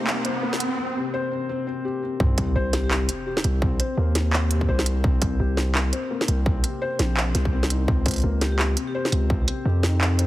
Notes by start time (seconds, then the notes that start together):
Already playing: C3 G3 A#3 C4 D#4 G4 C5, riser
0.07 C4, clap, snare
0.25 C5, closed hi-hat
0.43 A#3
0.53 snare
0.60 C4, closed hi-hat
0.78 C4
0.96 C3
1.14 C5
1.31 C4
1.49 C4
1.67 C4
1.85 G4
2.02 C4
2.20 C2 C4, kick, sub drop
2.38 C3, kick, closed hi-hat
2.56 C2 C5
2.73 C4 G4, snare, closed hi-hat
2.84 G4
2.91 C4, clap, snare
3.09 C4, closed hi-hat
3.26 G4
3.37 snare
3.44 C2 C4, closed hi-hat
3.62 C4, kick
3.80 C5, closed hi-hat
3.97 D#2 A#3
4.15 C4, snare, closed hi-hat
4.33 C4, clap
4.51 C3, closed hi-hat
4.61 kick
4.69 C2 C5
4.79 snare
4.86 C4, closed hi-hat
5.04 C2 C4, kick
5.22 C4, kick, closed hi-hat
5.40 C2 G4
5.57 C4, snare
5.75 C4, clap, snare
5.93 C5, closed hi-hat
6.11 A#3
6.21 snare
6.28 C2 C4, closed hi-hat
6.46 C4, kick
6.64 C3, closed hi-hat
6.82 C5
6.99 A#1 C4, snare, closed hi-hat
7.17 C4, clap
7.35 C2 C3, snare, closed hi-hat
7.45 kick
7.53 C4
7.63 snare
7.70 D#4, closed hi-hat
7.88 C#2 C4, kick
8.06 C5, kick, closed hi-hat
8.08 closed hi-hat
8.11 closed hi-hat
8.14 closed hi-hat
8.16 closed hi-hat
8.18 closed hi-hat
8.20 closed hi-hat
8.22 C#2 A#3, closed hi-hat
8.41 C4 G4, snare, closed hi-hat
8.52 G4
8.59 C4, clap, snare
8.77 C3, closed hi-hat
8.87 G4
8.95 C5
9.05 snare
9.12 C#2 C4, closed hi-hat
9.30 C4, kick
9.48 C4, closed hi-hat
9.65 F2 G4
9.83 D#4, snare
10.01 C4, clap
10.19 C5, closed hi-hat